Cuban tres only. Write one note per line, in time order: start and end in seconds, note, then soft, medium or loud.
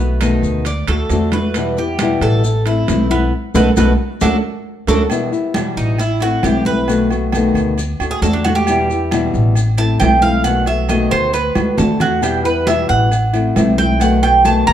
0.00 0.20 B3 medium
0.21 0.64 D#4 medium
0.66 0.88 D5 medium
0.88 1.31 A4 medium
1.33 1.76 B4 medium
1.78 2.21 G4 medium
2.22 2.65 A4 medium
2.67 3.10 E4 medium
3.11 3.32 B3 medium
3.55 3.69 F#4 medium
3.55 3.69 A4 medium
3.55 3.70 B4 loud
3.77 3.92 F#4 medium
3.77 3.92 A4 medium
3.77 3.92 B4 medium
4.21 4.36 D4 loud
4.21 4.36 F#4 medium
4.21 4.36 A4 medium
4.88 5.03 D4 medium
4.88 5.03 F#4 medium
4.88 5.03 A4 loud
5.77 5.99 D#4 medium
5.99 6.21 E4 medium
6.22 6.44 F#4 loud
6.44 6.66 G4 medium
6.66 7.08 B4 loud
8.11 8.22 G#4 medium
8.22 8.33 A4 loud
8.33 8.44 D4 medium
8.44 8.55 F#4 loud
8.55 9.18 G4 medium
9.78 9.99 A5 loud
10.00 10.21 G5 loud
10.22 10.44 F5 loud
10.44 10.66 F#5 loud
10.67 10.89 E5 medium
10.89 11.11 D#5 medium
11.11 11.33 C5 loud
11.34 11.75 B4 medium
11.78 12.00 A4 medium
12.01 12.22 F#4 medium
12.23 12.44 G4 medium
12.45 12.67 B4 medium
12.67 12.89 E5 medium
12.89 13.52 F#5 loud
13.78 14.00 G5 loud
14.01 14.22 F#5 medium
14.23 14.44 G5 loud
14.45 14.67 A5 medium
14.67 14.73 A#5 loud